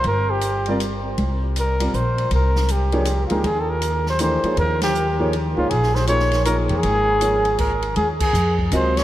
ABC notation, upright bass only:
X:1
M:3/4
L:1/8
Q:"Swing" 1/4=159
K:Ebmix
V:1 name="Upright bass" clef=bass
G,,,6 | C,,4 B,,,2 | C,,4- C,, D,, | E,,4- E,, z |
E,,4- E,, D,, | B,,,4- B,,, =E,, | A,,,6 | [K:Ebdor] E,,2 F,,2 D,,2 |]